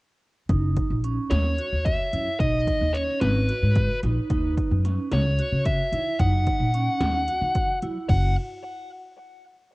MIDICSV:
0, 0, Header, 1, 5, 480
1, 0, Start_track
1, 0, Tempo, 542495
1, 437, Time_signature, 7, 3, 24, 8
1, 8625, End_track
2, 0, Start_track
2, 0, Title_t, "Lead electric guitar"
2, 0, Program_c, 0, 29
2, 1155, Note_on_c, 0, 73, 69
2, 1638, Note_on_c, 0, 76, 78
2, 1654, Note_off_c, 0, 73, 0
2, 2121, Note_off_c, 0, 76, 0
2, 2125, Note_on_c, 0, 75, 94
2, 2600, Note_on_c, 0, 73, 79
2, 2620, Note_off_c, 0, 75, 0
2, 2838, Note_off_c, 0, 73, 0
2, 2841, Note_on_c, 0, 71, 65
2, 3529, Note_off_c, 0, 71, 0
2, 4538, Note_on_c, 0, 73, 66
2, 4979, Note_off_c, 0, 73, 0
2, 5007, Note_on_c, 0, 76, 77
2, 5484, Note_off_c, 0, 76, 0
2, 5487, Note_on_c, 0, 78, 88
2, 6889, Note_off_c, 0, 78, 0
2, 7163, Note_on_c, 0, 78, 70
2, 7386, Note_off_c, 0, 78, 0
2, 8625, End_track
3, 0, Start_track
3, 0, Title_t, "Vibraphone"
3, 0, Program_c, 1, 11
3, 442, Note_on_c, 1, 63, 80
3, 837, Note_off_c, 1, 63, 0
3, 923, Note_on_c, 1, 61, 65
3, 1318, Note_off_c, 1, 61, 0
3, 1404, Note_on_c, 1, 66, 58
3, 1800, Note_off_c, 1, 66, 0
3, 1885, Note_on_c, 1, 64, 56
3, 2082, Note_off_c, 1, 64, 0
3, 2127, Note_on_c, 1, 63, 83
3, 2522, Note_off_c, 1, 63, 0
3, 2606, Note_on_c, 1, 61, 57
3, 3002, Note_off_c, 1, 61, 0
3, 3091, Note_on_c, 1, 66, 62
3, 3484, Note_off_c, 1, 66, 0
3, 3570, Note_on_c, 1, 63, 60
3, 3766, Note_off_c, 1, 63, 0
3, 3809, Note_on_c, 1, 63, 86
3, 4203, Note_off_c, 1, 63, 0
3, 4289, Note_on_c, 1, 61, 64
3, 4683, Note_off_c, 1, 61, 0
3, 4771, Note_on_c, 1, 66, 60
3, 5164, Note_off_c, 1, 66, 0
3, 5250, Note_on_c, 1, 64, 59
3, 5446, Note_off_c, 1, 64, 0
3, 5487, Note_on_c, 1, 63, 85
3, 5881, Note_off_c, 1, 63, 0
3, 5967, Note_on_c, 1, 61, 63
3, 6360, Note_off_c, 1, 61, 0
3, 6448, Note_on_c, 1, 66, 62
3, 6840, Note_off_c, 1, 66, 0
3, 6925, Note_on_c, 1, 64, 67
3, 7121, Note_off_c, 1, 64, 0
3, 7164, Note_on_c, 1, 66, 76
3, 7386, Note_off_c, 1, 66, 0
3, 8625, End_track
4, 0, Start_track
4, 0, Title_t, "Upright bass"
4, 0, Program_c, 2, 32
4, 436, Note_on_c, 2, 30, 83
4, 665, Note_off_c, 2, 30, 0
4, 798, Note_on_c, 2, 34, 71
4, 1027, Note_off_c, 2, 34, 0
4, 1159, Note_on_c, 2, 39, 92
4, 1389, Note_off_c, 2, 39, 0
4, 1522, Note_on_c, 2, 39, 68
4, 1750, Note_off_c, 2, 39, 0
4, 1884, Note_on_c, 2, 42, 80
4, 1998, Note_off_c, 2, 42, 0
4, 2123, Note_on_c, 2, 35, 75
4, 2352, Note_off_c, 2, 35, 0
4, 2485, Note_on_c, 2, 39, 80
4, 2713, Note_off_c, 2, 39, 0
4, 2844, Note_on_c, 2, 32, 86
4, 3073, Note_off_c, 2, 32, 0
4, 3206, Note_on_c, 2, 44, 73
4, 3434, Note_off_c, 2, 44, 0
4, 3567, Note_on_c, 2, 34, 86
4, 3681, Note_off_c, 2, 34, 0
4, 3807, Note_on_c, 2, 39, 81
4, 4035, Note_off_c, 2, 39, 0
4, 4168, Note_on_c, 2, 42, 76
4, 4395, Note_off_c, 2, 42, 0
4, 4524, Note_on_c, 2, 37, 87
4, 4753, Note_off_c, 2, 37, 0
4, 4883, Note_on_c, 2, 49, 67
4, 5112, Note_off_c, 2, 49, 0
4, 5239, Note_on_c, 2, 51, 75
4, 5356, Note_off_c, 2, 51, 0
4, 5482, Note_on_c, 2, 42, 85
4, 5711, Note_off_c, 2, 42, 0
4, 5838, Note_on_c, 2, 46, 73
4, 6069, Note_off_c, 2, 46, 0
4, 6197, Note_on_c, 2, 39, 89
4, 6428, Note_off_c, 2, 39, 0
4, 6559, Note_on_c, 2, 51, 75
4, 6789, Note_off_c, 2, 51, 0
4, 6923, Note_on_c, 2, 54, 77
4, 7036, Note_off_c, 2, 54, 0
4, 7160, Note_on_c, 2, 30, 86
4, 7384, Note_off_c, 2, 30, 0
4, 8625, End_track
5, 0, Start_track
5, 0, Title_t, "Drums"
5, 437, Note_on_c, 9, 42, 58
5, 438, Note_on_c, 9, 36, 88
5, 526, Note_off_c, 9, 36, 0
5, 526, Note_off_c, 9, 42, 0
5, 677, Note_on_c, 9, 42, 57
5, 679, Note_on_c, 9, 36, 64
5, 766, Note_off_c, 9, 42, 0
5, 767, Note_off_c, 9, 36, 0
5, 919, Note_on_c, 9, 42, 55
5, 1008, Note_off_c, 9, 42, 0
5, 1157, Note_on_c, 9, 38, 87
5, 1157, Note_on_c, 9, 42, 71
5, 1245, Note_off_c, 9, 38, 0
5, 1245, Note_off_c, 9, 42, 0
5, 1401, Note_on_c, 9, 42, 52
5, 1489, Note_off_c, 9, 42, 0
5, 1641, Note_on_c, 9, 36, 87
5, 1642, Note_on_c, 9, 42, 68
5, 1730, Note_off_c, 9, 36, 0
5, 1730, Note_off_c, 9, 42, 0
5, 1885, Note_on_c, 9, 42, 49
5, 1973, Note_off_c, 9, 42, 0
5, 2123, Note_on_c, 9, 36, 83
5, 2124, Note_on_c, 9, 42, 71
5, 2212, Note_off_c, 9, 36, 0
5, 2213, Note_off_c, 9, 42, 0
5, 2364, Note_on_c, 9, 36, 59
5, 2366, Note_on_c, 9, 42, 56
5, 2452, Note_off_c, 9, 36, 0
5, 2455, Note_off_c, 9, 42, 0
5, 2607, Note_on_c, 9, 42, 49
5, 2695, Note_off_c, 9, 42, 0
5, 2842, Note_on_c, 9, 38, 94
5, 2842, Note_on_c, 9, 42, 66
5, 2931, Note_off_c, 9, 38, 0
5, 2931, Note_off_c, 9, 42, 0
5, 3085, Note_on_c, 9, 42, 51
5, 3174, Note_off_c, 9, 42, 0
5, 3321, Note_on_c, 9, 42, 63
5, 3324, Note_on_c, 9, 36, 91
5, 3410, Note_off_c, 9, 42, 0
5, 3412, Note_off_c, 9, 36, 0
5, 3565, Note_on_c, 9, 38, 28
5, 3565, Note_on_c, 9, 42, 50
5, 3653, Note_off_c, 9, 38, 0
5, 3653, Note_off_c, 9, 42, 0
5, 3804, Note_on_c, 9, 42, 66
5, 3805, Note_on_c, 9, 36, 81
5, 3893, Note_off_c, 9, 42, 0
5, 3894, Note_off_c, 9, 36, 0
5, 4046, Note_on_c, 9, 36, 65
5, 4048, Note_on_c, 9, 42, 52
5, 4135, Note_off_c, 9, 36, 0
5, 4136, Note_off_c, 9, 42, 0
5, 4288, Note_on_c, 9, 38, 29
5, 4288, Note_on_c, 9, 42, 51
5, 4377, Note_off_c, 9, 38, 0
5, 4377, Note_off_c, 9, 42, 0
5, 4525, Note_on_c, 9, 38, 91
5, 4525, Note_on_c, 9, 42, 71
5, 4614, Note_off_c, 9, 38, 0
5, 4614, Note_off_c, 9, 42, 0
5, 4766, Note_on_c, 9, 42, 50
5, 4854, Note_off_c, 9, 42, 0
5, 5003, Note_on_c, 9, 42, 69
5, 5005, Note_on_c, 9, 36, 86
5, 5092, Note_off_c, 9, 42, 0
5, 5093, Note_off_c, 9, 36, 0
5, 5244, Note_on_c, 9, 42, 57
5, 5333, Note_off_c, 9, 42, 0
5, 5482, Note_on_c, 9, 42, 67
5, 5484, Note_on_c, 9, 36, 84
5, 5570, Note_off_c, 9, 42, 0
5, 5573, Note_off_c, 9, 36, 0
5, 5722, Note_on_c, 9, 42, 59
5, 5724, Note_on_c, 9, 36, 65
5, 5811, Note_off_c, 9, 42, 0
5, 5813, Note_off_c, 9, 36, 0
5, 5963, Note_on_c, 9, 42, 54
5, 6052, Note_off_c, 9, 42, 0
5, 6200, Note_on_c, 9, 38, 88
5, 6200, Note_on_c, 9, 42, 72
5, 6288, Note_off_c, 9, 38, 0
5, 6288, Note_off_c, 9, 42, 0
5, 6441, Note_on_c, 9, 42, 54
5, 6529, Note_off_c, 9, 42, 0
5, 6680, Note_on_c, 9, 42, 74
5, 6682, Note_on_c, 9, 36, 81
5, 6769, Note_off_c, 9, 42, 0
5, 6771, Note_off_c, 9, 36, 0
5, 6920, Note_on_c, 9, 42, 49
5, 7009, Note_off_c, 9, 42, 0
5, 7160, Note_on_c, 9, 49, 69
5, 7161, Note_on_c, 9, 36, 80
5, 7248, Note_off_c, 9, 49, 0
5, 7249, Note_off_c, 9, 36, 0
5, 8625, End_track
0, 0, End_of_file